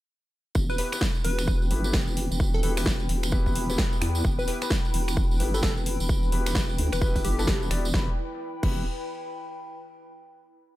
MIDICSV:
0, 0, Header, 1, 6, 480
1, 0, Start_track
1, 0, Key_signature, 1, "minor"
1, 0, Tempo, 461538
1, 576, Time_signature, 4, 2, 24, 8
1, 11191, End_track
2, 0, Start_track
2, 0, Title_t, "Ambient pad"
2, 0, Program_c, 0, 92
2, 576, Note_on_c, 0, 64, 76
2, 999, Note_on_c, 0, 79, 84
2, 1181, Note_on_c, 0, 71, 77
2, 2692, Note_on_c, 0, 83, 85
2, 8249, Note_off_c, 0, 64, 0
2, 8255, Note_off_c, 0, 79, 0
2, 8256, Note_off_c, 0, 71, 0
2, 8256, Note_off_c, 0, 83, 0
2, 8261, Note_on_c, 0, 64, 79
2, 8345, Note_on_c, 0, 71, 77
2, 8422, Note_on_c, 0, 79, 77
2, 8476, Note_on_c, 0, 83, 76
2, 10134, Note_off_c, 0, 79, 0
2, 10134, Note_off_c, 0, 83, 0
2, 10135, Note_off_c, 0, 71, 0
2, 10137, Note_off_c, 0, 64, 0
2, 11191, End_track
3, 0, Start_track
3, 0, Title_t, "Digital synth lead"
3, 0, Program_c, 1, 84
3, 724, Note_on_c, 1, 71, 91
3, 783, Note_off_c, 1, 71, 0
3, 816, Note_on_c, 1, 71, 75
3, 910, Note_off_c, 1, 71, 0
3, 1294, Note_on_c, 1, 71, 99
3, 1775, Note_off_c, 1, 71, 0
3, 2645, Note_on_c, 1, 69, 90
3, 2703, Note_off_c, 1, 69, 0
3, 2737, Note_on_c, 1, 69, 78
3, 2831, Note_off_c, 1, 69, 0
3, 4562, Note_on_c, 1, 71, 91
3, 4622, Note_off_c, 1, 71, 0
3, 4655, Note_on_c, 1, 71, 80
3, 4750, Note_off_c, 1, 71, 0
3, 5762, Note_on_c, 1, 69, 93
3, 5822, Note_off_c, 1, 69, 0
3, 5855, Note_on_c, 1, 69, 79
3, 5949, Note_off_c, 1, 69, 0
3, 7203, Note_on_c, 1, 71, 95
3, 7517, Note_off_c, 1, 71, 0
3, 7536, Note_on_c, 1, 67, 95
3, 7923, Note_off_c, 1, 67, 0
3, 11191, End_track
4, 0, Start_track
4, 0, Title_t, "Grand piano"
4, 0, Program_c, 2, 0
4, 816, Note_on_c, 2, 59, 87
4, 816, Note_on_c, 2, 64, 78
4, 816, Note_on_c, 2, 67, 82
4, 816, Note_on_c, 2, 71, 96
4, 941, Note_off_c, 2, 59, 0
4, 941, Note_off_c, 2, 64, 0
4, 941, Note_off_c, 2, 67, 0
4, 941, Note_off_c, 2, 71, 0
4, 962, Note_on_c, 2, 59, 89
4, 962, Note_on_c, 2, 64, 78
4, 962, Note_on_c, 2, 71, 95
4, 963, Note_on_c, 2, 67, 77
4, 1050, Note_off_c, 2, 59, 0
4, 1050, Note_off_c, 2, 64, 0
4, 1050, Note_off_c, 2, 71, 0
4, 1051, Note_off_c, 2, 67, 0
4, 1775, Note_on_c, 2, 64, 73
4, 1775, Note_on_c, 2, 71, 87
4, 1776, Note_on_c, 2, 59, 78
4, 1776, Note_on_c, 2, 67, 70
4, 1900, Note_off_c, 2, 64, 0
4, 1901, Note_off_c, 2, 59, 0
4, 1901, Note_off_c, 2, 67, 0
4, 1901, Note_off_c, 2, 71, 0
4, 1922, Note_on_c, 2, 59, 84
4, 1922, Note_on_c, 2, 64, 73
4, 1922, Note_on_c, 2, 67, 77
4, 1922, Note_on_c, 2, 71, 89
4, 2090, Note_off_c, 2, 59, 0
4, 2090, Note_off_c, 2, 64, 0
4, 2090, Note_off_c, 2, 67, 0
4, 2090, Note_off_c, 2, 71, 0
4, 2736, Note_on_c, 2, 59, 80
4, 2736, Note_on_c, 2, 64, 74
4, 2736, Note_on_c, 2, 67, 74
4, 2736, Note_on_c, 2, 71, 91
4, 2861, Note_off_c, 2, 59, 0
4, 2861, Note_off_c, 2, 64, 0
4, 2861, Note_off_c, 2, 67, 0
4, 2861, Note_off_c, 2, 71, 0
4, 2882, Note_on_c, 2, 64, 84
4, 2882, Note_on_c, 2, 67, 84
4, 2883, Note_on_c, 2, 59, 85
4, 2883, Note_on_c, 2, 71, 95
4, 3050, Note_off_c, 2, 59, 0
4, 3050, Note_off_c, 2, 64, 0
4, 3050, Note_off_c, 2, 67, 0
4, 3051, Note_off_c, 2, 71, 0
4, 3456, Note_on_c, 2, 59, 93
4, 3456, Note_on_c, 2, 64, 83
4, 3456, Note_on_c, 2, 67, 86
4, 3456, Note_on_c, 2, 71, 103
4, 3808, Note_off_c, 2, 59, 0
4, 3808, Note_off_c, 2, 64, 0
4, 3808, Note_off_c, 2, 67, 0
4, 3808, Note_off_c, 2, 71, 0
4, 3843, Note_on_c, 2, 59, 93
4, 3843, Note_on_c, 2, 64, 82
4, 3843, Note_on_c, 2, 67, 80
4, 3843, Note_on_c, 2, 71, 98
4, 4634, Note_off_c, 2, 59, 0
4, 4634, Note_off_c, 2, 64, 0
4, 4634, Note_off_c, 2, 67, 0
4, 4634, Note_off_c, 2, 71, 0
4, 4656, Note_on_c, 2, 59, 87
4, 4656, Note_on_c, 2, 64, 84
4, 4656, Note_on_c, 2, 67, 85
4, 4656, Note_on_c, 2, 71, 94
4, 4781, Note_off_c, 2, 59, 0
4, 4781, Note_off_c, 2, 64, 0
4, 4781, Note_off_c, 2, 67, 0
4, 4781, Note_off_c, 2, 71, 0
4, 4803, Note_on_c, 2, 59, 92
4, 4803, Note_on_c, 2, 64, 80
4, 4803, Note_on_c, 2, 71, 104
4, 4804, Note_on_c, 2, 67, 82
4, 4891, Note_off_c, 2, 59, 0
4, 4891, Note_off_c, 2, 64, 0
4, 4891, Note_off_c, 2, 67, 0
4, 4891, Note_off_c, 2, 71, 0
4, 5616, Note_on_c, 2, 67, 75
4, 5616, Note_on_c, 2, 71, 87
4, 5617, Note_on_c, 2, 59, 81
4, 5617, Note_on_c, 2, 64, 72
4, 5741, Note_off_c, 2, 59, 0
4, 5741, Note_off_c, 2, 64, 0
4, 5741, Note_off_c, 2, 67, 0
4, 5741, Note_off_c, 2, 71, 0
4, 5763, Note_on_c, 2, 59, 85
4, 5763, Note_on_c, 2, 64, 83
4, 5763, Note_on_c, 2, 67, 77
4, 5763, Note_on_c, 2, 71, 99
4, 5930, Note_off_c, 2, 71, 0
4, 5931, Note_off_c, 2, 59, 0
4, 5931, Note_off_c, 2, 64, 0
4, 5931, Note_off_c, 2, 67, 0
4, 6575, Note_on_c, 2, 59, 83
4, 6575, Note_on_c, 2, 64, 79
4, 6575, Note_on_c, 2, 67, 76
4, 6575, Note_on_c, 2, 71, 93
4, 6700, Note_off_c, 2, 59, 0
4, 6700, Note_off_c, 2, 64, 0
4, 6700, Note_off_c, 2, 67, 0
4, 6700, Note_off_c, 2, 71, 0
4, 6722, Note_on_c, 2, 59, 91
4, 6722, Note_on_c, 2, 64, 81
4, 6722, Note_on_c, 2, 67, 79
4, 6722, Note_on_c, 2, 71, 104
4, 6890, Note_off_c, 2, 59, 0
4, 6890, Note_off_c, 2, 64, 0
4, 6890, Note_off_c, 2, 67, 0
4, 6890, Note_off_c, 2, 71, 0
4, 7294, Note_on_c, 2, 59, 96
4, 7294, Note_on_c, 2, 64, 88
4, 7294, Note_on_c, 2, 67, 85
4, 7294, Note_on_c, 2, 71, 103
4, 7647, Note_off_c, 2, 59, 0
4, 7647, Note_off_c, 2, 64, 0
4, 7647, Note_off_c, 2, 67, 0
4, 7647, Note_off_c, 2, 71, 0
4, 7682, Note_on_c, 2, 59, 102
4, 7682, Note_on_c, 2, 64, 91
4, 7682, Note_on_c, 2, 67, 95
4, 7682, Note_on_c, 2, 69, 113
4, 7993, Note_off_c, 2, 59, 0
4, 7993, Note_off_c, 2, 64, 0
4, 7993, Note_off_c, 2, 67, 0
4, 7993, Note_off_c, 2, 69, 0
4, 8015, Note_on_c, 2, 59, 102
4, 8015, Note_on_c, 2, 64, 98
4, 8015, Note_on_c, 2, 67, 91
4, 8015, Note_on_c, 2, 74, 117
4, 8154, Note_off_c, 2, 59, 0
4, 8154, Note_off_c, 2, 64, 0
4, 8154, Note_off_c, 2, 67, 0
4, 8154, Note_off_c, 2, 74, 0
4, 8255, Note_on_c, 2, 71, 100
4, 8256, Note_on_c, 2, 59, 94
4, 8256, Note_on_c, 2, 64, 85
4, 8256, Note_on_c, 2, 67, 84
4, 8410, Note_off_c, 2, 59, 0
4, 8410, Note_off_c, 2, 64, 0
4, 8410, Note_off_c, 2, 67, 0
4, 8410, Note_off_c, 2, 71, 0
4, 8976, Note_on_c, 2, 59, 83
4, 8976, Note_on_c, 2, 64, 78
4, 8976, Note_on_c, 2, 67, 77
4, 8976, Note_on_c, 2, 71, 93
4, 9164, Note_off_c, 2, 59, 0
4, 9164, Note_off_c, 2, 67, 0
4, 9165, Note_off_c, 2, 64, 0
4, 9165, Note_off_c, 2, 71, 0
4, 11191, End_track
5, 0, Start_track
5, 0, Title_t, "Wobble bass"
5, 0, Program_c, 3, 39
5, 575, Note_on_c, 3, 28, 92
5, 800, Note_off_c, 3, 28, 0
5, 1296, Note_on_c, 3, 28, 101
5, 1761, Note_off_c, 3, 28, 0
5, 1776, Note_on_c, 3, 31, 97
5, 2001, Note_off_c, 3, 31, 0
5, 2015, Note_on_c, 3, 28, 99
5, 2379, Note_off_c, 3, 28, 0
5, 2403, Note_on_c, 3, 28, 96
5, 2721, Note_off_c, 3, 28, 0
5, 2736, Note_on_c, 3, 28, 102
5, 2961, Note_off_c, 3, 28, 0
5, 2976, Note_on_c, 3, 28, 102
5, 3201, Note_off_c, 3, 28, 0
5, 3216, Note_on_c, 3, 28, 102
5, 3681, Note_off_c, 3, 28, 0
5, 3696, Note_on_c, 3, 28, 97
5, 3921, Note_off_c, 3, 28, 0
5, 4176, Note_on_c, 3, 40, 97
5, 4401, Note_off_c, 3, 40, 0
5, 4416, Note_on_c, 3, 28, 93
5, 4641, Note_off_c, 3, 28, 0
5, 5136, Note_on_c, 3, 28, 100
5, 5601, Note_off_c, 3, 28, 0
5, 5615, Note_on_c, 3, 31, 93
5, 5841, Note_off_c, 3, 31, 0
5, 5856, Note_on_c, 3, 28, 101
5, 6220, Note_off_c, 3, 28, 0
5, 6243, Note_on_c, 3, 28, 98
5, 6561, Note_off_c, 3, 28, 0
5, 6575, Note_on_c, 3, 28, 96
5, 6801, Note_off_c, 3, 28, 0
5, 6817, Note_on_c, 3, 28, 96
5, 7042, Note_off_c, 3, 28, 0
5, 7058, Note_on_c, 3, 38, 102
5, 7180, Note_off_c, 3, 38, 0
5, 7203, Note_on_c, 3, 28, 99
5, 7419, Note_off_c, 3, 28, 0
5, 7443, Note_on_c, 3, 28, 98
5, 7521, Note_off_c, 3, 28, 0
5, 7536, Note_on_c, 3, 31, 98
5, 7761, Note_off_c, 3, 31, 0
5, 7777, Note_on_c, 3, 28, 101
5, 8002, Note_off_c, 3, 28, 0
5, 8016, Note_on_c, 3, 28, 98
5, 8241, Note_off_c, 3, 28, 0
5, 8256, Note_on_c, 3, 28, 96
5, 8410, Note_off_c, 3, 28, 0
5, 8976, Note_on_c, 3, 28, 104
5, 9199, Note_off_c, 3, 28, 0
5, 11191, End_track
6, 0, Start_track
6, 0, Title_t, "Drums"
6, 570, Note_on_c, 9, 54, 69
6, 575, Note_on_c, 9, 36, 122
6, 674, Note_off_c, 9, 54, 0
6, 679, Note_off_c, 9, 36, 0
6, 723, Note_on_c, 9, 54, 40
6, 815, Note_on_c, 9, 46, 104
6, 827, Note_off_c, 9, 54, 0
6, 919, Note_off_c, 9, 46, 0
6, 961, Note_on_c, 9, 26, 82
6, 964, Note_on_c, 9, 54, 85
6, 1051, Note_on_c, 9, 38, 120
6, 1055, Note_on_c, 9, 36, 115
6, 1065, Note_off_c, 9, 26, 0
6, 1068, Note_off_c, 9, 54, 0
6, 1155, Note_off_c, 9, 38, 0
6, 1159, Note_off_c, 9, 36, 0
6, 1195, Note_on_c, 9, 54, 38
6, 1295, Note_on_c, 9, 46, 100
6, 1299, Note_off_c, 9, 54, 0
6, 1399, Note_off_c, 9, 46, 0
6, 1441, Note_on_c, 9, 26, 68
6, 1441, Note_on_c, 9, 54, 81
6, 1535, Note_on_c, 9, 36, 124
6, 1537, Note_off_c, 9, 54, 0
6, 1537, Note_on_c, 9, 54, 64
6, 1545, Note_off_c, 9, 26, 0
6, 1639, Note_off_c, 9, 36, 0
6, 1641, Note_off_c, 9, 54, 0
6, 1684, Note_on_c, 9, 54, 41
6, 1775, Note_on_c, 9, 46, 101
6, 1788, Note_off_c, 9, 54, 0
6, 1879, Note_off_c, 9, 46, 0
6, 1916, Note_on_c, 9, 54, 84
6, 2011, Note_off_c, 9, 54, 0
6, 2011, Note_on_c, 9, 54, 60
6, 2012, Note_on_c, 9, 38, 119
6, 2016, Note_on_c, 9, 36, 123
6, 2115, Note_off_c, 9, 54, 0
6, 2116, Note_off_c, 9, 38, 0
6, 2120, Note_off_c, 9, 36, 0
6, 2156, Note_on_c, 9, 54, 47
6, 2256, Note_on_c, 9, 46, 103
6, 2260, Note_off_c, 9, 54, 0
6, 2360, Note_off_c, 9, 46, 0
6, 2407, Note_on_c, 9, 54, 81
6, 2496, Note_on_c, 9, 36, 127
6, 2500, Note_off_c, 9, 54, 0
6, 2500, Note_on_c, 9, 54, 62
6, 2600, Note_off_c, 9, 36, 0
6, 2604, Note_off_c, 9, 54, 0
6, 2640, Note_on_c, 9, 54, 39
6, 2736, Note_on_c, 9, 46, 108
6, 2744, Note_off_c, 9, 54, 0
6, 2840, Note_off_c, 9, 46, 0
6, 2882, Note_on_c, 9, 54, 87
6, 2883, Note_on_c, 9, 26, 79
6, 2883, Note_on_c, 9, 46, 63
6, 2973, Note_on_c, 9, 38, 121
6, 2975, Note_off_c, 9, 54, 0
6, 2975, Note_on_c, 9, 54, 69
6, 2976, Note_on_c, 9, 36, 127
6, 2987, Note_off_c, 9, 26, 0
6, 2987, Note_off_c, 9, 46, 0
6, 3077, Note_off_c, 9, 38, 0
6, 3079, Note_off_c, 9, 54, 0
6, 3080, Note_off_c, 9, 36, 0
6, 3117, Note_on_c, 9, 54, 37
6, 3216, Note_on_c, 9, 46, 102
6, 3221, Note_off_c, 9, 54, 0
6, 3320, Note_off_c, 9, 46, 0
6, 3360, Note_on_c, 9, 54, 82
6, 3363, Note_on_c, 9, 26, 68
6, 3448, Note_off_c, 9, 54, 0
6, 3448, Note_on_c, 9, 54, 68
6, 3456, Note_on_c, 9, 36, 125
6, 3467, Note_off_c, 9, 26, 0
6, 3552, Note_off_c, 9, 54, 0
6, 3560, Note_off_c, 9, 36, 0
6, 3598, Note_on_c, 9, 54, 45
6, 3603, Note_on_c, 9, 36, 58
6, 3697, Note_on_c, 9, 46, 112
6, 3702, Note_off_c, 9, 54, 0
6, 3707, Note_off_c, 9, 36, 0
6, 3801, Note_off_c, 9, 46, 0
6, 3844, Note_on_c, 9, 54, 86
6, 3934, Note_on_c, 9, 38, 127
6, 3936, Note_on_c, 9, 36, 125
6, 3948, Note_off_c, 9, 54, 0
6, 4038, Note_off_c, 9, 38, 0
6, 4040, Note_off_c, 9, 36, 0
6, 4083, Note_on_c, 9, 54, 48
6, 4177, Note_on_c, 9, 26, 89
6, 4177, Note_on_c, 9, 46, 111
6, 4187, Note_off_c, 9, 54, 0
6, 4281, Note_off_c, 9, 26, 0
6, 4281, Note_off_c, 9, 46, 0
6, 4314, Note_on_c, 9, 54, 93
6, 4416, Note_on_c, 9, 36, 124
6, 4418, Note_off_c, 9, 54, 0
6, 4420, Note_on_c, 9, 54, 68
6, 4520, Note_off_c, 9, 36, 0
6, 4524, Note_off_c, 9, 54, 0
6, 4565, Note_on_c, 9, 54, 47
6, 4656, Note_on_c, 9, 46, 106
6, 4669, Note_off_c, 9, 54, 0
6, 4760, Note_off_c, 9, 46, 0
6, 4801, Note_on_c, 9, 54, 76
6, 4804, Note_on_c, 9, 26, 74
6, 4893, Note_on_c, 9, 38, 120
6, 4895, Note_off_c, 9, 54, 0
6, 4895, Note_on_c, 9, 54, 72
6, 4896, Note_on_c, 9, 36, 124
6, 4908, Note_off_c, 9, 26, 0
6, 4997, Note_off_c, 9, 38, 0
6, 4999, Note_off_c, 9, 54, 0
6, 5000, Note_off_c, 9, 36, 0
6, 5042, Note_on_c, 9, 54, 42
6, 5136, Note_on_c, 9, 46, 109
6, 5146, Note_off_c, 9, 54, 0
6, 5240, Note_off_c, 9, 46, 0
6, 5283, Note_on_c, 9, 54, 86
6, 5284, Note_on_c, 9, 26, 65
6, 5376, Note_on_c, 9, 36, 127
6, 5377, Note_off_c, 9, 54, 0
6, 5377, Note_on_c, 9, 54, 60
6, 5388, Note_off_c, 9, 26, 0
6, 5480, Note_off_c, 9, 36, 0
6, 5481, Note_off_c, 9, 54, 0
6, 5525, Note_on_c, 9, 54, 45
6, 5616, Note_on_c, 9, 46, 115
6, 5629, Note_off_c, 9, 54, 0
6, 5720, Note_off_c, 9, 46, 0
6, 5765, Note_on_c, 9, 54, 80
6, 5852, Note_on_c, 9, 38, 120
6, 5856, Note_on_c, 9, 36, 126
6, 5857, Note_off_c, 9, 54, 0
6, 5857, Note_on_c, 9, 54, 65
6, 5956, Note_off_c, 9, 38, 0
6, 5960, Note_off_c, 9, 36, 0
6, 5961, Note_off_c, 9, 54, 0
6, 6005, Note_on_c, 9, 54, 42
6, 6096, Note_on_c, 9, 46, 115
6, 6109, Note_off_c, 9, 54, 0
6, 6200, Note_off_c, 9, 46, 0
6, 6242, Note_on_c, 9, 54, 86
6, 6337, Note_on_c, 9, 36, 123
6, 6338, Note_off_c, 9, 54, 0
6, 6338, Note_on_c, 9, 54, 78
6, 6441, Note_off_c, 9, 36, 0
6, 6442, Note_off_c, 9, 54, 0
6, 6477, Note_on_c, 9, 54, 42
6, 6576, Note_on_c, 9, 46, 104
6, 6581, Note_off_c, 9, 54, 0
6, 6680, Note_off_c, 9, 46, 0
6, 6722, Note_on_c, 9, 54, 83
6, 6723, Note_on_c, 9, 26, 75
6, 6723, Note_on_c, 9, 46, 61
6, 6812, Note_on_c, 9, 38, 115
6, 6816, Note_on_c, 9, 36, 124
6, 6818, Note_off_c, 9, 54, 0
6, 6818, Note_on_c, 9, 54, 71
6, 6827, Note_off_c, 9, 26, 0
6, 6827, Note_off_c, 9, 46, 0
6, 6916, Note_off_c, 9, 38, 0
6, 6920, Note_off_c, 9, 36, 0
6, 6922, Note_off_c, 9, 54, 0
6, 6963, Note_on_c, 9, 54, 39
6, 7056, Note_on_c, 9, 46, 109
6, 7067, Note_off_c, 9, 54, 0
6, 7160, Note_off_c, 9, 46, 0
6, 7200, Note_on_c, 9, 54, 80
6, 7203, Note_on_c, 9, 26, 65
6, 7296, Note_off_c, 9, 54, 0
6, 7296, Note_on_c, 9, 36, 127
6, 7296, Note_on_c, 9, 54, 64
6, 7307, Note_off_c, 9, 26, 0
6, 7400, Note_off_c, 9, 36, 0
6, 7400, Note_off_c, 9, 54, 0
6, 7443, Note_on_c, 9, 36, 62
6, 7443, Note_on_c, 9, 46, 63
6, 7443, Note_on_c, 9, 54, 41
6, 7536, Note_off_c, 9, 46, 0
6, 7536, Note_on_c, 9, 46, 107
6, 7547, Note_off_c, 9, 36, 0
6, 7547, Note_off_c, 9, 54, 0
6, 7640, Note_off_c, 9, 46, 0
6, 7686, Note_on_c, 9, 54, 77
6, 7773, Note_on_c, 9, 38, 120
6, 7776, Note_on_c, 9, 36, 127
6, 7790, Note_off_c, 9, 54, 0
6, 7877, Note_off_c, 9, 38, 0
6, 7880, Note_off_c, 9, 36, 0
6, 7930, Note_on_c, 9, 54, 45
6, 8017, Note_on_c, 9, 26, 83
6, 8017, Note_on_c, 9, 46, 114
6, 8034, Note_off_c, 9, 54, 0
6, 8121, Note_off_c, 9, 26, 0
6, 8121, Note_off_c, 9, 46, 0
6, 8166, Note_on_c, 9, 54, 82
6, 8256, Note_on_c, 9, 36, 120
6, 8257, Note_on_c, 9, 38, 92
6, 8270, Note_off_c, 9, 54, 0
6, 8360, Note_off_c, 9, 36, 0
6, 8361, Note_off_c, 9, 38, 0
6, 8976, Note_on_c, 9, 36, 114
6, 8976, Note_on_c, 9, 49, 85
6, 9080, Note_off_c, 9, 36, 0
6, 9080, Note_off_c, 9, 49, 0
6, 11191, End_track
0, 0, End_of_file